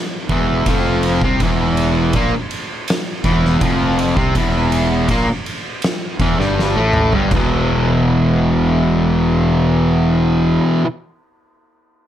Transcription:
0.29 0.64 E1 loud
0.29 0.66 E2 medium
0.29 0.66 E3 loud
0.29 kick loud
0.29 ride medium
0.66 1.18 F1 medium
0.66 1.21 F2 medium
0.66 1.22 F3 loud
0.66 kick loud
0.66 ride loud
1.03 ride medium
1.22 1.39 C2 loud
1.22 1.40 C3 medium
1.22 1.40 C4 loud
1.22 kick loud
1.40 2.10 E1 loud
1.40 2.14 E2 loud
1.40 2.14 E3 loud
1.40 kick loud
1.40 ride medium
1.77 ride medium
2.13 2.31 A#1 medium
2.13 2.32 A#2 loud
2.13 2.32 A#3 loud
2.13 kick loud
2.13 ride loud
2.51 ride medium
2.88 snare loud
2.88 ride loud
3.24 3.59 E1 medium
3.24 3.60 E2 medium
3.24 3.61 E3 loud
3.24 kick loud
3.24 ride medium
3.45 snare soft
3.61 4.13 F1 medium
3.61 4.16 F2 medium
3.61 4.16 F3 medium
3.61 kick loud
3.61 ride loud
3.99 ride medium
4.16 4.34 C2 loud
4.16 4.34 C3 medium
4.16 4.35 C4 loud
4.16 kick loud
4.35 5.05 E1 loud
4.35 5.08 E2 loud
4.35 5.09 E3 loud
4.35 kick loud
4.35 ride loud
4.72 ride medium
5.09 5.26 A#1 medium
5.09 5.27 A#2 loud
5.09 5.27 A#3 loud
5.09 kick loud
5.09 ride loud
5.46 ride medium
5.82 snare loud
5.82 ride medium
6.19 6.37 E1 medium
6.19 6.38 E2 medium
6.19 6.38 E3 loud
6.19 kick loud
6.19 ride medium
6.39 6.74 G1 medium
6.39 6.75 G2 medium
6.39 6.76 G3 medium
6.39 snare soft
6.59 snare medium
6.76 7.11 A1 medium
6.76 7.12 A2 medium
6.76 7.13 A3 loud
6.93 mid tom medium
7.13 7.30 G1 medium
7.13 7.31 G2 medium
7.13 7.31 G3 medium
7.13 floor tom medium
7.31 10.58 E1 medium
7.31 10.83 E2 medium
7.31 10.85 B2 loud
7.31 kick loud
7.31 floor tom loud
7.31 crash medium
7.36 10.86 E3 loud

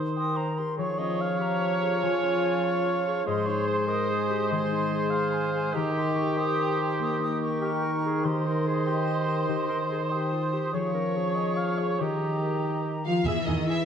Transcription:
0.00 0.61 D#3 soft
0.00 0.80 D#3 soft
0.00 0.80 D#4 soft
0.00 0.57 G4 soft
0.00 0.36 C5 soft
0.00 0.49 C5 soft
0.00 0.50 C5 soft
0.00 0.15 G5 soft
0.16 0.79 A#4 soft
0.16 0.80 G5 soft
0.16 0.38 D#6 soft
0.36 0.80 C5 soft
0.36 0.60 A#5 soft
0.58 0.80 G4 soft
0.58 0.78 C6 soft
0.77 3.22 F3 medium
0.77 2.01 F3 soft
0.77 1.40 G#4 soft
0.77 3.22 C#5 medium
0.77 1.00 C#5 soft
0.77 1.43 C#6 soft
0.98 2.21 C#4 soft
0.98 1.22 D#5 medium
1.19 1.60 C#5 soft
1.19 3.26 F5 medium
1.39 2.01 G4 medium
1.39 5.30 F5 soft
1.39 2.04 A#5 soft
1.61 2.41 C#5 soft
1.82 3.05 G#4 soft
2.01 3.28 F3 soft
2.01 3.23 F4 soft
2.01 2.66 G#5 soft
2.23 3.28 C#4 soft
2.43 2.84 C#5 soft
2.64 3.87 G#5 soft
2.64 3.26 C#6 soft
2.85 3.28 C#5 soft
3.06 4.28 G#4 soft
3.26 5.77 G#2 medium
3.26 5.71 G#3 medium
3.26 3.89 G#4 medium
3.26 5.76 C5 medium
3.26 3.48 D#5 medium
3.26 3.90 C6 soft
3.46 4.70 D#4 soft
3.46 3.66 C#5 medium
3.67 3.76 C5 medium
3.67 4.08 C5 soft
3.87 4.09 A#4 medium
3.87 4.49 D#5 medium
3.87 5.11 G#5 soft
3.87 4.50 D#6 soft
4.09 4.29 G#4 medium
4.09 4.91 C5 soft
4.29 4.53 G4 medium
4.29 5.53 G#4 soft
4.49 5.74 D#3 soft
4.49 5.75 G#4 medium
4.49 5.12 D#5 medium
4.49 5.10 C6 soft
4.72 5.94 D#4 soft
4.92 5.32 C5 soft
5.10 5.72 F5 medium
5.10 5.77 G#5 soft
5.10 5.35 C6 medium
5.33 5.77 C5 soft
5.33 5.54 G#5 medium
5.54 5.77 G#4 soft
5.54 5.77 G#5 medium
5.72 10.58 D#3 medium
5.72 8.23 D#3 medium
5.72 6.20 G4 medium
5.72 7.96 G4 medium
5.72 6.39 D#5 medium
5.72 5.95 A#5 medium
5.95 7.19 D#4 soft
5.95 6.17 C6 medium
6.16 6.57 A#4 soft
6.16 6.39 C#6 medium
6.36 6.77 G4 medium
6.36 7.34 C5 soft
6.36 7.60 G5 soft
6.36 6.78 D#6 soft
6.58 7.39 A#4 soft
6.79 8.02 G4 soft
6.98 8.26 A#3 soft
6.98 7.57 A#4 soft
6.98 7.20 D#6 medium
7.20 8.43 D#4 soft
7.20 7.41 D#6 medium
7.40 7.82 A#4 soft
7.40 8.26 C#6 medium
7.61 7.71 G4 medium
7.61 8.26 A#4 soft
7.61 8.85 G5 soft
7.82 7.91 A#4 medium
7.82 8.26 A#4 soft
8.03 9.27 G4 soft
8.03 8.27 G#4 medium
8.24 9.47 D#3 soft
8.24 8.48 G4 medium
8.24 10.70 C5 medium
8.24 10.12 D#5 medium
8.24 10.13 C6 medium
8.45 9.68 D#4 soft
8.45 8.69 A#4 soft
8.65 8.89 G#4 medium
8.65 9.07 C5 soft
8.86 9.48 G4 soft
8.86 10.10 G5 soft
9.08 9.89 C5 soft
9.28 10.51 G4 soft
9.48 10.75 D#3 soft
9.48 9.68 G4 soft
9.68 10.75 D#4 soft
9.68 9.78 A#4 soft
9.90 10.01 G#4 medium
9.90 10.31 C5 soft
10.10 10.35 G4 soft
10.10 10.73 C5 soft
10.10 10.76 G5 soft
10.10 10.76 D#6 soft
10.32 10.55 F4 soft
10.32 10.76 C5 soft
10.53 10.76 G4 soft
10.53 10.72 G4 medium
10.73 12.01 F3 soft
10.73 11.98 F3 medium
10.73 10.93 G#4 soft
10.73 11.37 C#5 soft
10.73 12.02 C#5 soft
10.73 12.00 C#6 soft
10.93 12.01 C#4 soft
10.93 11.18 A#4 soft
11.16 12.00 G#4 soft
11.35 11.58 D#5 soft
11.35 12.02 G#5 soft
11.57 12.02 C#5 soft
11.57 11.80 F5 soft
11.79 12.02 G#4 soft
11.79 12.03 C#5 soft
11.99 13.05 D#3 soft
11.99 13.28 D#3 soft
11.99 13.05 G4 soft
11.99 13.06 G4 soft
11.99 13.06 D#5 soft
11.99 13.04 A#5 soft
12.21 13.28 D#4 soft
12.43 12.83 A#4 soft
12.64 13.28 G5 soft
12.85 13.28 A#4 soft
13.05 13.25 F3 soft
13.05 13.25 F4 medium
13.05 13.28 G4 soft
13.05 13.25 F5 soft
13.24 13.34 E2 medium
13.24 13.47 E3 medium
13.24 13.85 E3 medium
13.24 13.46 E4 medium
13.24 13.35 G#4 soft
13.24 13.46 G#4 soft
13.24 13.36 E5 soft
13.24 13.46 E5 soft
13.24 13.47 E5 medium
13.24 13.48 E5 medium
13.24 13.32 G#5 soft
13.44 13.56 E2 soft
13.44 13.68 D#3 medium
13.44 13.55 B3 soft
13.44 13.66 D#4 medium
13.44 13.85 E4 soft
13.44 13.55 G#4 soft
13.44 13.57 G#4 soft
13.44 13.68 D#5 medium
13.44 13.56 E5 soft
13.44 13.54 G#5 soft
13.49 13.69 D#5 medium
13.66 13.85 E3 medium
13.66 13.85 E4 medium
13.66 13.78 G#4 soft
13.66 13.85 B4 soft
13.66 13.76 E5 soft
13.66 13.85 E5 medium
13.66 13.75 G#5 soft

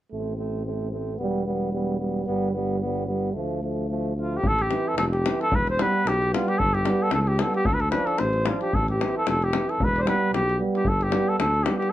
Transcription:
0.12 1.18 A1 soft
0.12 0.37 A3 soft
0.12 0.36 C4 soft
0.37 0.64 A3 soft
0.37 0.64 C4 soft
0.65 0.92 A3 soft
0.65 0.91 C4 soft
0.92 1.19 A3 soft
0.92 1.17 C4 soft
1.18 2.26 E1 soft
1.18 1.47 G3 medium
1.18 1.44 B3 medium
1.45 1.73 G3 soft
1.45 1.72 B3 medium
1.72 2.00 G3 medium
1.72 1.97 B3 soft
1.98 2.27 G3 soft
1.98 2.24 B3 soft
2.25 3.34 G1 medium
2.25 2.54 G3 medium
2.25 2.51 B3 medium
2.51 2.78 B3 medium
2.55 2.82 G3 medium
2.79 3.06 B3 soft
2.83 3.09 G3 medium
3.06 3.35 G3 soft
3.06 3.32 B3 soft
3.33 4.41 D2 soft
3.33 3.62 F3 medium
3.33 3.61 A3 soft
3.62 3.89 F3 soft
3.62 3.89 A3 medium
3.89 4.16 F3 medium
3.89 4.16 A3 soft
4.16 4.43 F3 soft
4.16 4.43 A3 soft
4.21 4.38 F4 medium
4.37 4.49 G4 medium
4.42 4.72 A1 medium
4.42 davul low medium
4.47 4.63 A4 loud
4.59 4.90 G4 medium
4.59 davul high soft
4.69 4.97 E3 medium
4.69 4.96 C4 medium
4.69 davul high soft
4.88 4.97 A4 medium
4.97 5.26 F1 medium
4.97 5.04 A4 medium
4.97 davul high medium
5.12 5.37 G4 medium
5.12 davul high soft
5.24 5.51 E3 medium
5.24 5.50 C4 medium
5.24 davul high medium
5.41 5.57 A4 medium
5.41 davul high soft
5.51 5.81 E1 medium
5.51 5.68 B4 medium
5.51 davul low medium
5.67 5.83 C5 medium
5.67 davul high soft
5.77 6.04 G3 medium
5.77 6.04 B3 medium
5.77 davul high medium
5.82 6.09 B4 medium
6.05 6.34 B1 medium
6.05 6.33 G4 medium
6.05 davul high medium
6.22 davul high soft
6.32 6.58 G3 medium
6.32 6.58 B3 medium
6.32 6.50 F4 medium
6.32 davul high medium
6.48 6.60 G4 medium
6.48 davul high soft
6.58 6.89 G1 medium
6.58 6.75 A4 loud
6.58 davul low medium
6.74 7.04 G4 medium
6.74 davul high soft
6.84 7.11 G3 medium
6.84 7.12 B3 medium
6.84 davul high medium
7.02 7.13 A4 medium
7.11 7.41 C#2 medium
7.11 7.21 A4 medium
7.11 davul high medium
7.21 7.29 A4 medium
7.27 7.42 G4 medium
7.27 davul high soft
7.38 7.65 G3 soft
7.38 7.65 B3 soft
7.38 7.54 A4 medium
7.38 davul high medium
7.54 7.67 G4 medium
7.54 davul high soft
7.65 7.95 D2 medium
7.65 7.75 A4 medium
7.65 davul low medium
7.74 7.82 B4 medium
7.80 7.90 A4 medium
7.80 davul high soft
7.91 8.18 F3 medium
7.91 8.18 D4 medium
7.91 8.08 B4 medium
7.91 davul high medium
8.06 8.20 A4 medium
8.06 davul high soft
8.18 8.49 A1 medium
8.18 8.49 C5 medium
8.18 davul high medium
8.33 davul high soft
8.46 8.72 F3 medium
8.46 8.72 D4 soft
8.46 8.61 F4 medium
8.46 davul high medium
8.61 8.76 G4 medium
8.61 davul high soft
8.73 9.03 A1 medium
8.73 8.88 A4 medium
8.73 davul low medium
8.88 9.13 G4 medium
8.88 davul high soft
8.97 9.24 E3 medium
8.97 9.25 C4 medium
8.97 davul high medium
9.17 9.26 A4 medium
9.27 9.56 F1 medium
9.27 9.45 A4 medium
9.27 davul high medium
9.42 9.71 G4 medium
9.42 davul high soft
9.52 9.78 E3 soft
9.52 9.78 C4 soft
9.52 davul high medium
9.69 9.85 A4 medium
9.69 davul high soft
9.79 10.09 E1 medium
9.79 davul low medium
9.84 9.99 B4 medium
9.96 10.03 D5 medium
9.96 davul high soft
10.01 10.31 G3 medium
10.01 10.06 C5 medium
10.06 10.32 B3 medium
10.06 10.32 B4 medium
10.06 davul high medium
10.32 10.62 B1 medium
10.32 10.58 G4 medium
10.32 davul high medium
10.49 davul high soft
10.58 10.85 G3 medium
10.58 10.84 B3 soft
10.75 10.90 G4 medium
10.75 davul high soft
10.85 11.15 G1 medium
10.85 11.04 A4 medium
10.85 davul low medium
11.01 11.30 G4 medium
11.01 davul high soft
11.10 11.38 G3 medium
11.10 11.37 B3 medium
11.10 davul high medium
11.29 11.38 A4 medium
11.39 11.69 D2 medium
11.39 11.65 A4 medium
11.39 davul high medium
11.54 davul high soft
11.64 11.91 G3 soft
11.64 11.91 B3 soft
11.64 11.77 G4 medium
11.64 davul high medium
11.78 11.91 G4 medium
11.82 davul high soft

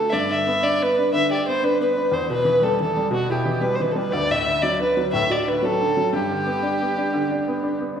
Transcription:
0.00 0.11 D3 medium
0.00 0.13 A3 medium
0.00 0.11 A4 medium
0.09 2.09 G2 medium
0.09 0.31 D5 medium
0.09 0.14 E5 medium
0.30 0.47 D3 medium
0.30 0.65 E5 medium
0.47 0.63 B3 medium
0.63 0.81 D4 soft
0.63 0.84 D5 medium
0.82 0.97 B3 soft
0.82 1.13 B4 medium
0.98 1.13 D4 soft
1.13 2.10 D3 medium
1.13 1.30 E5 medium
1.30 1.46 G4 soft
1.30 1.46 D5 medium
1.48 1.63 B3 soft
1.48 1.66 C5 medium
1.63 1.81 D4 medium
1.63 1.80 B4 medium
1.81 1.96 B3 soft
1.81 2.15 B4 medium
1.97 2.12 D4 soft
2.11 4.08 E2 medium
2.11 2.31 C5 medium
2.30 2.46 B2 soft
2.30 2.65 B4 medium
2.45 2.61 E3 medium
2.62 2.80 G3 medium
2.62 2.80 A4 medium
2.80 2.96 E3 soft
2.80 3.10 A4 medium
2.97 3.12 G3 medium
3.11 4.09 B2 medium
3.11 3.30 F#4 medium
3.30 3.46 E4 soft
3.30 3.63 G4 medium
3.45 3.62 E3 soft
3.61 3.79 G3 soft
3.61 3.77 B4 medium
3.75 3.83 C5 medium
3.80 3.96 E3 soft
3.80 3.93 B4 medium
3.91 3.98 A4 soft
3.95 4.12 G3 soft
3.95 4.13 B4 medium
4.12 6.09 D2 medium
4.12 4.33 D5 loud
4.31 4.46 A2 soft
4.31 4.64 E5 medium
4.47 4.63 D3 soft
4.63 4.80 F#3 soft
4.63 4.81 D5 medium
4.80 4.96 D3 soft
4.80 5.11 B4 medium
4.97 5.12 F#3 soft
5.13 6.10 A2 medium
5.13 5.33 E5 medium
5.30 5.46 F#4 soft
5.30 5.50 D5 medium
5.47 5.62 D3 soft
5.47 5.66 B4 medium
5.62 5.80 F#3 medium
5.62 6.14 A4 medium
5.82 5.97 D3 soft
5.97 6.12 F#3 medium
6.13 8.00 G2 medium
6.13 7.77 G4 medium
6.31 6.47 D3 medium
6.46 6.62 B3 medium
6.62 6.80 D4 soft
6.82 6.97 B3 soft
6.97 7.13 D4 soft
7.13 8.00 D3 medium
7.31 7.46 D4 medium
7.48 7.63 B3 soft
7.63 7.80 D4 soft
7.80 7.96 B3 soft
7.96 8.00 D4 soft

